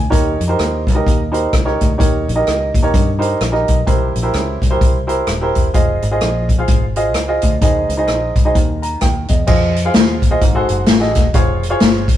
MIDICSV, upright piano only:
0, 0, Header, 1, 2, 480
1, 0, Start_track
1, 0, Tempo, 469116
1, 121, Time_signature, 4, 2, 24, 8
1, 7320, Tempo, 464756
1, 12505, End_track
2, 0, Start_track
2, 0, Title_t, "Upright piano"
2, 0, Program_c, 0, 0
2, 0, Note_on_c, 0, 80, 58
2, 103, Note_on_c, 0, 51, 65
2, 105, Note_on_c, 0, 70, 69
2, 106, Note_on_c, 0, 67, 72
2, 108, Note_on_c, 0, 63, 72
2, 109, Note_on_c, 0, 73, 81
2, 374, Note_off_c, 0, 80, 0
2, 408, Note_off_c, 0, 67, 0
2, 408, Note_off_c, 0, 70, 0
2, 409, Note_off_c, 0, 63, 0
2, 409, Note_off_c, 0, 73, 0
2, 488, Note_on_c, 0, 63, 67
2, 495, Note_on_c, 0, 67, 67
2, 500, Note_on_c, 0, 70, 71
2, 503, Note_on_c, 0, 72, 81
2, 837, Note_off_c, 0, 51, 0
2, 850, Note_off_c, 0, 63, 0
2, 853, Note_off_c, 0, 67, 0
2, 855, Note_off_c, 0, 70, 0
2, 857, Note_off_c, 0, 72, 0
2, 969, Note_on_c, 0, 63, 70
2, 970, Note_on_c, 0, 67, 61
2, 976, Note_on_c, 0, 70, 71
2, 977, Note_on_c, 0, 75, 80
2, 1231, Note_off_c, 0, 63, 0
2, 1232, Note_off_c, 0, 67, 0
2, 1234, Note_off_c, 0, 70, 0
2, 1235, Note_off_c, 0, 75, 0
2, 1348, Note_on_c, 0, 63, 74
2, 1355, Note_on_c, 0, 70, 66
2, 1356, Note_on_c, 0, 67, 71
2, 1359, Note_on_c, 0, 72, 83
2, 1568, Note_off_c, 0, 63, 0
2, 1571, Note_off_c, 0, 67, 0
2, 1571, Note_off_c, 0, 70, 0
2, 1573, Note_off_c, 0, 72, 0
2, 1691, Note_on_c, 0, 63, 72
2, 1692, Note_on_c, 0, 67, 63
2, 1693, Note_on_c, 0, 73, 74
2, 1694, Note_on_c, 0, 70, 64
2, 1948, Note_off_c, 0, 63, 0
2, 1949, Note_off_c, 0, 67, 0
2, 1950, Note_off_c, 0, 70, 0
2, 1950, Note_off_c, 0, 73, 0
2, 2027, Note_on_c, 0, 63, 69
2, 2027, Note_on_c, 0, 67, 67
2, 2034, Note_on_c, 0, 51, 60
2, 2034, Note_on_c, 0, 73, 81
2, 2036, Note_on_c, 0, 70, 66
2, 2330, Note_off_c, 0, 63, 0
2, 2330, Note_off_c, 0, 67, 0
2, 2334, Note_off_c, 0, 70, 0
2, 2334, Note_off_c, 0, 73, 0
2, 2410, Note_on_c, 0, 67, 65
2, 2411, Note_on_c, 0, 63, 71
2, 2414, Note_on_c, 0, 75, 82
2, 2417, Note_on_c, 0, 70, 63
2, 2763, Note_off_c, 0, 51, 0
2, 2772, Note_off_c, 0, 63, 0
2, 2772, Note_off_c, 0, 67, 0
2, 2774, Note_off_c, 0, 75, 0
2, 2775, Note_off_c, 0, 70, 0
2, 2891, Note_on_c, 0, 63, 71
2, 2894, Note_on_c, 0, 67, 67
2, 2895, Note_on_c, 0, 70, 68
2, 2900, Note_on_c, 0, 73, 77
2, 3153, Note_off_c, 0, 63, 0
2, 3155, Note_off_c, 0, 67, 0
2, 3155, Note_off_c, 0, 70, 0
2, 3158, Note_off_c, 0, 73, 0
2, 3262, Note_on_c, 0, 63, 78
2, 3267, Note_on_c, 0, 70, 69
2, 3269, Note_on_c, 0, 67, 68
2, 3270, Note_on_c, 0, 72, 86
2, 3486, Note_off_c, 0, 63, 0
2, 3488, Note_off_c, 0, 70, 0
2, 3489, Note_off_c, 0, 67, 0
2, 3490, Note_off_c, 0, 72, 0
2, 3601, Note_on_c, 0, 67, 62
2, 3602, Note_on_c, 0, 63, 74
2, 3607, Note_on_c, 0, 70, 65
2, 3610, Note_on_c, 0, 75, 78
2, 3864, Note_off_c, 0, 67, 0
2, 3865, Note_off_c, 0, 63, 0
2, 3867, Note_off_c, 0, 70, 0
2, 3869, Note_off_c, 0, 75, 0
2, 3954, Note_on_c, 0, 67, 68
2, 3955, Note_on_c, 0, 48, 61
2, 3955, Note_on_c, 0, 64, 68
2, 3956, Note_on_c, 0, 70, 68
2, 3960, Note_on_c, 0, 72, 83
2, 4254, Note_off_c, 0, 64, 0
2, 4254, Note_off_c, 0, 67, 0
2, 4255, Note_off_c, 0, 70, 0
2, 4257, Note_off_c, 0, 72, 0
2, 4322, Note_on_c, 0, 64, 79
2, 4329, Note_on_c, 0, 67, 64
2, 4329, Note_on_c, 0, 72, 80
2, 4333, Note_on_c, 0, 70, 65
2, 4684, Note_off_c, 0, 48, 0
2, 4688, Note_off_c, 0, 64, 0
2, 4692, Note_off_c, 0, 67, 0
2, 4692, Note_off_c, 0, 72, 0
2, 4694, Note_off_c, 0, 70, 0
2, 4811, Note_on_c, 0, 64, 68
2, 4815, Note_on_c, 0, 72, 84
2, 4818, Note_on_c, 0, 67, 67
2, 4820, Note_on_c, 0, 70, 64
2, 5073, Note_off_c, 0, 64, 0
2, 5076, Note_off_c, 0, 72, 0
2, 5077, Note_off_c, 0, 67, 0
2, 5078, Note_off_c, 0, 70, 0
2, 5189, Note_on_c, 0, 64, 74
2, 5190, Note_on_c, 0, 67, 69
2, 5196, Note_on_c, 0, 72, 82
2, 5198, Note_on_c, 0, 70, 69
2, 5409, Note_off_c, 0, 64, 0
2, 5409, Note_off_c, 0, 67, 0
2, 5412, Note_off_c, 0, 72, 0
2, 5413, Note_off_c, 0, 70, 0
2, 5537, Note_on_c, 0, 64, 71
2, 5540, Note_on_c, 0, 67, 67
2, 5549, Note_on_c, 0, 70, 69
2, 5554, Note_on_c, 0, 72, 80
2, 5791, Note_off_c, 0, 64, 0
2, 5793, Note_off_c, 0, 67, 0
2, 5798, Note_off_c, 0, 70, 0
2, 5800, Note_off_c, 0, 72, 0
2, 5871, Note_on_c, 0, 65, 76
2, 5872, Note_on_c, 0, 68, 72
2, 5876, Note_on_c, 0, 72, 69
2, 5883, Note_on_c, 0, 75, 80
2, 6172, Note_off_c, 0, 65, 0
2, 6172, Note_off_c, 0, 68, 0
2, 6174, Note_off_c, 0, 72, 0
2, 6177, Note_off_c, 0, 75, 0
2, 6255, Note_on_c, 0, 65, 71
2, 6256, Note_on_c, 0, 68, 72
2, 6263, Note_on_c, 0, 72, 67
2, 6267, Note_on_c, 0, 75, 85
2, 6613, Note_off_c, 0, 65, 0
2, 6614, Note_off_c, 0, 68, 0
2, 6617, Note_off_c, 0, 72, 0
2, 6619, Note_off_c, 0, 75, 0
2, 6738, Note_on_c, 0, 65, 78
2, 6741, Note_on_c, 0, 72, 66
2, 6743, Note_on_c, 0, 68, 64
2, 6744, Note_on_c, 0, 77, 74
2, 6995, Note_off_c, 0, 65, 0
2, 6996, Note_off_c, 0, 72, 0
2, 6997, Note_off_c, 0, 68, 0
2, 6998, Note_off_c, 0, 77, 0
2, 7124, Note_on_c, 0, 65, 75
2, 7126, Note_on_c, 0, 72, 63
2, 7129, Note_on_c, 0, 68, 68
2, 7129, Note_on_c, 0, 75, 81
2, 7334, Note_off_c, 0, 65, 0
2, 7335, Note_off_c, 0, 72, 0
2, 7336, Note_off_c, 0, 68, 0
2, 7337, Note_off_c, 0, 75, 0
2, 7452, Note_on_c, 0, 65, 72
2, 7455, Note_on_c, 0, 68, 67
2, 7457, Note_on_c, 0, 72, 64
2, 7459, Note_on_c, 0, 75, 78
2, 7709, Note_off_c, 0, 65, 0
2, 7711, Note_off_c, 0, 68, 0
2, 7712, Note_off_c, 0, 72, 0
2, 7713, Note_off_c, 0, 75, 0
2, 7800, Note_on_c, 0, 63, 72
2, 7804, Note_on_c, 0, 68, 67
2, 7808, Note_on_c, 0, 72, 66
2, 7809, Note_on_c, 0, 51, 62
2, 7812, Note_on_c, 0, 75, 76
2, 8097, Note_off_c, 0, 63, 0
2, 8099, Note_off_c, 0, 68, 0
2, 8101, Note_off_c, 0, 72, 0
2, 8103, Note_off_c, 0, 75, 0
2, 8167, Note_on_c, 0, 63, 76
2, 8172, Note_on_c, 0, 68, 65
2, 8175, Note_on_c, 0, 72, 66
2, 8177, Note_on_c, 0, 75, 80
2, 8532, Note_off_c, 0, 63, 0
2, 8533, Note_off_c, 0, 51, 0
2, 8534, Note_off_c, 0, 68, 0
2, 8536, Note_off_c, 0, 72, 0
2, 8537, Note_off_c, 0, 75, 0
2, 8660, Note_on_c, 0, 63, 76
2, 8663, Note_on_c, 0, 68, 67
2, 8663, Note_on_c, 0, 72, 65
2, 8667, Note_on_c, 0, 75, 76
2, 8760, Note_on_c, 0, 51, 62
2, 8763, Note_off_c, 0, 63, 0
2, 8764, Note_off_c, 0, 68, 0
2, 8764, Note_off_c, 0, 72, 0
2, 8766, Note_off_c, 0, 75, 0
2, 9045, Note_on_c, 0, 82, 62
2, 9234, Note_off_c, 0, 82, 0
2, 9240, Note_on_c, 0, 79, 60
2, 9488, Note_off_c, 0, 51, 0
2, 9514, Note_off_c, 0, 79, 0
2, 9527, Note_on_c, 0, 75, 55
2, 9700, Note_off_c, 0, 75, 0
2, 9711, Note_on_c, 0, 65, 84
2, 9713, Note_on_c, 0, 68, 68
2, 9714, Note_on_c, 0, 72, 71
2, 9716, Note_on_c, 0, 75, 93
2, 10014, Note_off_c, 0, 65, 0
2, 10015, Note_off_c, 0, 68, 0
2, 10015, Note_off_c, 0, 72, 0
2, 10016, Note_off_c, 0, 75, 0
2, 10106, Note_on_c, 0, 65, 76
2, 10109, Note_on_c, 0, 68, 71
2, 10110, Note_on_c, 0, 72, 69
2, 10112, Note_on_c, 0, 77, 88
2, 10461, Note_off_c, 0, 65, 0
2, 10463, Note_off_c, 0, 68, 0
2, 10463, Note_off_c, 0, 72, 0
2, 10464, Note_off_c, 0, 77, 0
2, 10578, Note_on_c, 0, 65, 79
2, 10578, Note_on_c, 0, 68, 69
2, 10583, Note_on_c, 0, 72, 71
2, 10583, Note_on_c, 0, 75, 87
2, 10682, Note_off_c, 0, 65, 0
2, 10682, Note_off_c, 0, 68, 0
2, 10684, Note_off_c, 0, 72, 0
2, 10684, Note_off_c, 0, 75, 0
2, 10685, Note_on_c, 0, 44, 68
2, 10825, Note_on_c, 0, 68, 77
2, 10825, Note_on_c, 0, 69, 72
2, 10828, Note_on_c, 0, 66, 87
2, 10835, Note_on_c, 0, 72, 92
2, 11144, Note_off_c, 0, 69, 0
2, 11145, Note_off_c, 0, 68, 0
2, 11146, Note_off_c, 0, 66, 0
2, 11149, Note_off_c, 0, 72, 0
2, 11291, Note_on_c, 0, 68, 69
2, 11292, Note_on_c, 0, 66, 71
2, 11298, Note_on_c, 0, 69, 70
2, 11303, Note_on_c, 0, 75, 83
2, 11408, Note_off_c, 0, 44, 0
2, 11548, Note_off_c, 0, 68, 0
2, 11549, Note_off_c, 0, 66, 0
2, 11552, Note_off_c, 0, 69, 0
2, 11554, Note_off_c, 0, 75, 0
2, 11643, Note_on_c, 0, 65, 86
2, 11646, Note_on_c, 0, 68, 71
2, 11648, Note_on_c, 0, 72, 69
2, 11652, Note_on_c, 0, 73, 90
2, 11937, Note_off_c, 0, 65, 0
2, 11938, Note_off_c, 0, 68, 0
2, 11939, Note_off_c, 0, 72, 0
2, 11941, Note_off_c, 0, 73, 0
2, 12015, Note_on_c, 0, 65, 81
2, 12016, Note_on_c, 0, 68, 79
2, 12018, Note_on_c, 0, 72, 76
2, 12021, Note_on_c, 0, 73, 90
2, 12372, Note_off_c, 0, 65, 0
2, 12373, Note_off_c, 0, 68, 0
2, 12373, Note_off_c, 0, 72, 0
2, 12375, Note_off_c, 0, 73, 0
2, 12505, End_track
0, 0, End_of_file